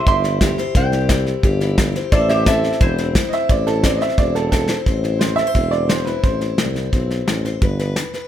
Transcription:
Already playing: steel-string acoustic guitar E4 C5, pedal steel guitar C5
0.00 pedal steel guitar E5
0.06 tuba G1, steel-string acoustic guitar C3 G4, resonator guitar played with a steel bar E5 C6, kick, snare
0.24 steel-string acoustic guitar E4, snare
0.41 steel-string acoustic guitar G3 G4, kick, snare, hi-hat pedal
0.58 steel-string acoustic guitar C5, snare
0.75 tuba C2, steel-string acoustic guitar C3 C5, resonator guitar played with a steel bar C5 G5, kick, snare
0.92 steel-string acoustic guitar G4, snare
1.09 steel-string acoustic guitar G3 E4, kick, snare, hi-hat pedal
1.26 snare
1.43 tuba G1, steel-string acoustic guitar C3 G4, kick, snare
1.60 steel-string acoustic guitar E4, snare
1.78 steel-string acoustic guitar G3 G4, kick, snare, hi-hat pedal
1.95 steel-string acoustic guitar C5, snare
2.12 tuba A1, steel-string acoustic guitar A2 C5, resonator guitar played with a steel bar A4 D5, pedal steel guitar C5 E5, kick, snare
2.29 steel-string acoustic guitar E4, resonator guitar played with a steel bar G4 E5, snare
2.46 steel-string acoustic guitar A3 C4, resonator guitar played with a steel bar A4 E5, kick, snare, hi-hat pedal
2.64 snare
2.72 snare
2.81 tuba E1, steel-string acoustic guitar E3 E4, resonator guitar played with a steel bar E4 C5, kick, snare
2.98 steel-string acoustic guitar C4, snare
3.15 steel-string acoustic guitar A3 E4, kick, snare, hi-hat pedal
3.29 upright piano D#5, snare
3.33 steel-string acoustic guitar E4, upright piano E5
3.49 tuba A1, steel-string acoustic guitar A2 E4, upright piano D5, kick, snare
3.67 steel-string acoustic guitar E4, upright piano A4, snare
3.83 steel-string acoustic guitar A3 C4, upright piano D5, kick, snare, hi-hat pedal
3.97 upright piano D#5, snare
4.02 upright piano E5
4.09 snare
4.18 tuba E1, steel-string acoustic guitar E3 E4, upright piano D5, kick, snare
4.35 steel-string acoustic guitar C4, upright piano A4, snare
4.52 steel-string acoustic guitar A3 E4, upright piano A4, kick, snare, hi-hat pedal
4.69 steel-string acoustic guitar C5, snare
4.86 tuba A1, steel-string acoustic guitar A2 C5, kick, snare
5.04 steel-string acoustic guitar E4, snare
5.19 steel-string acoustic guitar A3, upright piano C5, snare, hi-hat pedal
5.36 steel-string acoustic guitar A4, upright piano E5, snare
5.47 steel-string acoustic guitar C5
5.55 tuba E1, steel-string acoustic guitar E3 C4, kick, snare
5.71 upright piano D5, snare
5.89 steel-string acoustic guitar A3, upright piano C5, snare, hi-hat pedal
6.05 steel-string acoustic guitar E4, upright piano B4, snare
6.23 tuba A1, steel-string acoustic guitar A2 E4, upright piano C5, kick, snare
6.41 steel-string acoustic guitar E4, snare
6.58 tuba C2, steel-string acoustic guitar A3, snare, hi-hat pedal
6.76 steel-string acoustic guitar E4, snare
6.93 tuba B1, steel-string acoustic guitar E3 C4, kick, snare
7.10 snare
7.27 tuba A1, steel-string acoustic guitar A3, snare, hi-hat pedal
7.45 steel-string acoustic guitar C5, snare
7.62 tuba G1, steel-string acoustic guitar G3 B4, kick, snare
7.79 steel-string acoustic guitar B4, snare
7.96 steel-string acoustic guitar D4, snare, hi-hat pedal
8.14 steel-string acoustic guitar B4, snare

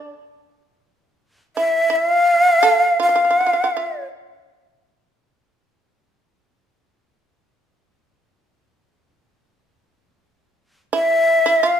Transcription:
Already playing: shamisen D4, shakuhachi D5
1.57 shamisen E4, shakuhachi E5
1.90 shamisen E4
1.96 shakuhachi F5
2.07 shamisen F4
2.63 shamisen A4
3.00 shamisen F4, shakuhachi F5
3.09 shamisen F4
3.16 shamisen F4
3.25 shamisen F4
3.31 shamisen F4
3.40 shamisen F4
3.46 shamisen F4
3.53 shamisen F4
3.64 shamisen F4
3.77 shamisen F4
10.93 shamisen E4, shakuhachi E5
11.46 shamisen E4
11.63 shamisen F4, shakuhachi F5

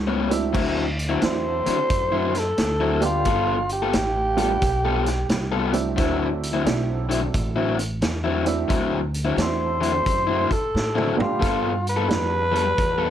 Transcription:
Already playing: upright bass C#2, tenor saxophone F#4
0.07 overdriven electric guitar A2 G3 B3 C#4
0.30 honky-tonk piano F#3 A3 C4 D4 E4, muted overdriven electric guitar stroke, closed hi-hat
0.53 upright bass D2, overdriven electric guitar D3 F#3 C4 E4, kick, crash
0.99 closed hi-hat
1.09 overdriven electric guitar D3 F#3 C4 E4
1.21 upright bass E2, honky-tonk piano F#3 A3 C4 D4 E4, tenor saxophone C5, muted overdriven electric guitar stroke, snare, closed hi-hat
1.66 overdriven electric guitar D3 F#3 C4 E4, muted upright bass stroke, closed hi-hat
1.79 muted overdriven electric guitar stroke
1.90 upright bass F#2, kick, closed hi-hat
2.12 overdriven electric guitar D3 F#3 C4 E4
2.35 tenor saxophone A4, muted overdriven electric guitar stroke, snare, closed hi-hat
2.58 upright bass D2, snare, closed hi-hat
2.80 overdriven electric guitar D3 F#3 C4 E4
3.01 honky-tonk piano G3 A3 B3 D4 G4, tenor saxophone F4, muted overdriven electric guitar stroke, closed hi-hat
3.25 upright bass G1, overdriven electric guitar G3 B3 F4 A4, kick, closed hi-hat
3.69 tenor saxophone G4, closed hi-hat
3.82 overdriven electric guitar G3 B3 F4 A4
3.93 upright bass A1, muted overdriven electric guitar stroke, snare, closed hi-hat
4.36 honky-tonk piano G3 A3 B3 D4 F4, overdriven electric guitar G3 B3 F4 A4, closed hi-hat
4.51 muted overdriven electric guitar stroke
4.62 upright bass B1, kick, snare, closed hi-hat
4.85 overdriven electric guitar G3 B3 F4 A4
5.06 muted overdriven electric guitar stroke, snare, closed hi-hat
5.29 upright bass C2, snare, closed hi-hat
5.52 overdriven electric guitar G3 B3 F4 A4
5.73 honky-tonk piano F#3 A3 C4 D4 E4, muted overdriven electric guitar stroke, closed hi-hat
5.96 upright bass D2, overdriven electric guitar D3 F#3 C4 E4, kick, snare, closed hi-hat
6.43 closed hi-hat
6.53 overdriven electric guitar D3 F#3 C4 E4
6.65 upright bass B1, honky-tonk piano F#3 A3 C4 D4 E4, muted overdriven electric guitar stroke, snare, closed hi-hat
7.09 overdriven electric guitar D3 F#3 C4 E4, closed hi-hat
7.22 muted overdriven electric guitar stroke
7.34 upright bass A1, kick, closed hi-hat
7.56 overdriven electric guitar D3 F#3 C4 E4
7.78 muted overdriven electric guitar stroke, closed hi-hat
8.01 upright bass E2, snare, closed hi-hat
8.24 overdriven electric guitar D3 F#3 C4 E4
8.45 honky-tonk piano F#3 A3 C4 D4 E4, muted overdriven electric guitar stroke, closed hi-hat
8.68 upright bass D2, overdriven electric guitar D3 F#3 C4 E4, kick, closed hi-hat
9.14 closed hi-hat
9.25 overdriven electric guitar D3 F#3 C4 E4
9.37 upright bass E2, honky-tonk piano F#3 A3 C4 D4 E4, muted overdriven electric guitar stroke, snare, closed hi-hat
9.42 tenor saxophone C5
9.81 overdriven electric guitar D3 F#3 C4 E4, closed hi-hat
9.93 muted overdriven electric guitar stroke
10.06 upright bass F#2, kick, closed hi-hat
10.27 overdriven electric guitar D3 F#3 C4 E4
10.50 tenor saxophone A4, muted overdriven electric guitar stroke, muted upright bass stroke, kick, closed hi-hat
10.75 upright bass A2, snare
10.95 overdriven electric guitar D3 F#3 C4 E4, mid tom
11.17 honky-tonk piano G3 A3 B3 D4 G4, muted overdriven electric guitar stroke, muted upright bass stroke, floor tom
11.21 tenor saxophone F4
11.40 upright bass G2, overdriven electric guitar G3 B3 F4 A4, kick, snare, closed hi-hat
11.87 tenor saxophone B4, closed hi-hat
11.97 overdriven electric guitar G3 B3 F4 A4
12.08 upright bass F2, honky-tonk piano G3 A3 B3 D4 F4, muted overdriven electric guitar stroke, snare, closed hi-hat
12.52 overdriven electric guitar G3 B3 F4 A4, closed hi-hat
12.64 muted overdriven electric guitar stroke
12.78 upright bass E2, kick, closed hi-hat
12.98 overdriven electric guitar G3 B3 F4 A4

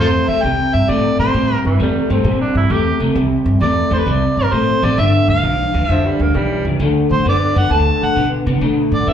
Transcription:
0.00 upright bass E2, clean electric guitar C3 A3, harmonica C5
0.28 upright bass E2, clean electric guitar C3 A3, harmonica E5
0.43 upright bass C2, clean electric guitar C3 G3, harmonica G5
0.74 upright bass G2, harmonica E5
0.88 upright bass A2, clean electric guitar C3 A3, harmonica D5
1.19 upright bass A#2, clean electric guitar C3 A3, harmonica C5
1.34 upright bass A2, clean electric guitar C3 G3
1.65 upright bass G2, tenor saxophone E3
1.79 upright bass E2, clean electric guitar C3 A3, tenor saxophone G3
2.10 upright bass G2, clean electric guitar C3 A3, tenor saxophone C4
2.24 upright bass A#2, clean electric guitar C3 G3
2.41 tenor saxophone D4
2.55 upright bass G2, tenor saxophone E4
2.70 upright bass E2, clean electric guitar C3 A3, tenor saxophone G4
3.00 upright bass C2, clean electric guitar C3 A3
3.15 upright bass C2, clean electric guitar C3 G3
3.46 upright bass G2
3.61 upright bass E2, clean electric guitar C3 A3, harmonica D5
3.90 upright bass E2, clean electric guitar C3 A3, harmonica C5
3.95 harmonica B4
4.06 upright bass C2, clean electric guitar C3 G3, harmonica D5
4.37 upright bass G2, harmonica A#4
4.52 upright bass A2, clean electric guitar C3 A3, harmonica C5
4.82 upright bass A1, clean electric guitar C3 A3, harmonica D5
4.97 upright bass G1, clean electric guitar G2 D3, harmonica E5
5.28 upright bass D2, harmonica F5
5.43 upright bass B1, clean electric guitar G2 E3
5.73 upright bass D2, clean electric guitar G2 E3
5.88 upright bass F2, clean electric guitar G2 D3, tenor saxophone F3, harmonica E5
6.05 tenor saxophone G3
6.19 upright bass D2, tenor saxophone A#3
6.34 upright bass B1, clean electric guitar G2 E3, tenor saxophone G3
6.65 upright bass C#2, clean electric guitar G2 E3
6.80 upright bass D2, clean electric guitar D3 A3
7.11 upright bass A2, harmonica C5
7.25 upright bass F#2, clean electric guitar D3 B3, harmonica D5
7.55 upright bass F#2, clean electric guitar D3 B3, harmonica F#5
7.71 upright bass D2, clean electric guitar D3 A3, harmonica A5
8.02 upright bass A2, harmonica F#5
8.16 upright bass B2, clean electric guitar D3 B3
8.46 upright bass C3, clean electric guitar D3 B3
8.61 upright bass B2, clean electric guitar D3 A3
8.92 upright bass A2, harmonica D5
9.07 upright bass F#2, clean electric guitar D3 B3, harmonica E5

